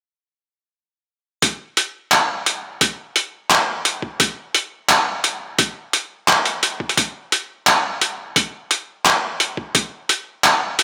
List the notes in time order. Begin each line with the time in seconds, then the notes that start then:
1.42 kick, closed hi-hat
1.77 closed hi-hat
2.12 clap, closed hi-hat
2.46 closed hi-hat
2.81 kick, closed hi-hat
3.16 closed hi-hat
3.50 clap, closed hi-hat
3.85 closed hi-hat
4.02 kick
4.20 kick, closed hi-hat
4.54 closed hi-hat
4.89 clap, closed hi-hat
5.24 closed hi-hat
5.59 kick, closed hi-hat
5.93 closed hi-hat
6.28 clap, closed hi-hat
6.45 closed hi-hat
6.63 closed hi-hat
6.80 kick
6.89 closed hi-hat
6.97 kick, closed hi-hat
7.32 closed hi-hat
7.67 clap, closed hi-hat
8.01 closed hi-hat
8.36 kick, closed hi-hat
8.71 closed hi-hat
9.05 clap, closed hi-hat
9.40 closed hi-hat
9.57 kick
9.75 kick, closed hi-hat
10.09 closed hi-hat
10.44 clap, closed hi-hat
10.79 closed hi-hat